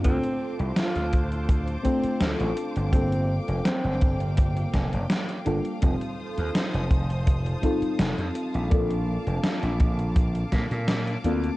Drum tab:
HH |xx-xxxxxxxxxxxxx|xx-xxxxxxxxxxxxx|xx-xxxxxxxxxxxxx|xx-xxxxxxxxxxxxx|
SD |----o-------o---|----o-----o-o---|----o-------o---|----o-----o-o---|
BD |o-----o-o-o-----|o-----o-o-o-----|o-----o-o-o-----|o-----o-o-o-----|